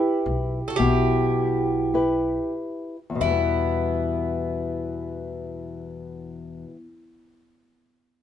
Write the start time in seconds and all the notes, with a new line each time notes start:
Already playing: E4 G4 B4
0.26 B1
0.68 F#4 A4
0.76 B1 B2 E4 G4
1.94 E4 G4 B4
3.10 E2
3.15 B2
3.20 E2 E3 B3 E4
3.25 G3
3.31 B3